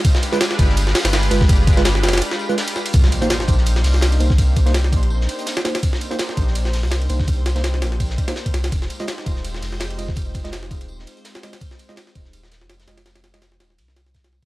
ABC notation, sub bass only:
X:1
M:4/4
L:1/16
Q:"Swing 16ths" 1/4=166
K:Cm
V:1 name="Sub bass" clef=bass
z6 G,,,4 z G,,,3 G,,,2- | G,,,6 F,,,2 z8 | C,,2 z4 B,,,4 C,,6- | C,,6 B,,,4 z6 |
z6 B,,,4- B,,, C,,3 C,,2- | C,,6 B,,,4 z4 C,,2 | F,,,2 z4 E,,,4 F,,,6- | F,,,6 E,,,4 z6 |
z6 E,,,4- E,,, F,,,3 F,,,2- | F,,,6 E,,,2 C,,6- C,, z |]